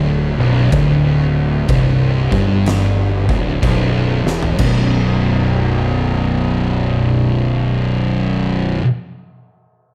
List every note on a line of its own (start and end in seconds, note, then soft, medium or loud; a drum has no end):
0.00 0.34 D1 medium
0.00 0.37 D2 loud
0.39 0.70 B0 loud
0.39 0.71 B1 loud
0.71 1.65 D1 loud
0.71 1.68 D2 loud
0.71 kick loud
0.71 crash medium
1.68 2.28 C1 loud
1.68 2.30 C2 loud
1.68 kick loud
1.68 crash medium
2.32 3.25 G1 loud
2.32 3.27 G2 loud
2.32 kick loud
2.66 snare loud
2.66 crash medium
3.29 3.60 D1 medium
3.29 3.61 D2 loud
3.29 kick loud
3.63 4.22 B0 medium
3.63 4.24 B1 loud
3.63 kick loud
3.63 crash medium
4.25 4.57 E1 loud
4.25 4.58 E2 loud
4.25 snare medium
4.43 floor tom medium
4.58 8.79 B0 medium
4.58 8.82 B1 loud
4.58 8.84 F#2 loud
4.58 kick loud
4.58 crash loud
4.63 8.86 B2 loud